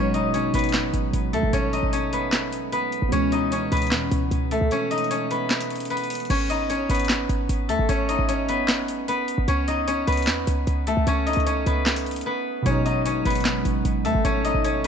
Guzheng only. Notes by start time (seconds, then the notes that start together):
Already playing: A3 B3 C#4 D#4 A4 B4 C#5 D#5
0.14 D#4 D#5
0.34 C#4 C#5
0.54 B3 B4
1.33 A3 A4
1.53 C#4 C#5
1.73 D#4 D#5
1.93 C#4 C#5
2.13 B3 B4
2.72 B3 B4
3.12 C#4 C#5
3.32 D#4 D#5
3.52 C#4 C#5
3.72 B3 B4
4.51 A3 A4
4.72 C#4 C#5
4.91 D#4 D#5
5.11 C#4 C#5
5.31 B3 B4
5.90 B3 B4
6.30 C#4 C#5
6.50 D#4 D#5
6.70 C#4 C#5
6.90 B3 B4
7.69 A3 A4
7.89 C#4 C#5
8.09 D#4 D#5
8.29 C#4 C#5
8.49 B3 B4
9.08 B3 B4
9.48 C#4 C#5
9.68 D#4 D#5
9.88 C#4 C#5
10.07 B3 B4
10.87 A3 A4
11.08 C#4 C#5
11.26 D#4 D#5
11.46 C#4 C#5
11.67 B3 B4
12.26 B3 B4
12.66 C#4 C#5
12.86 D#4 D#5
13.06 C#4 C#5
13.26 B3 B4
14.05 A3 A4
14.25 C#4 C#5
14.45 D#4 D#5
14.64 C#4 C#5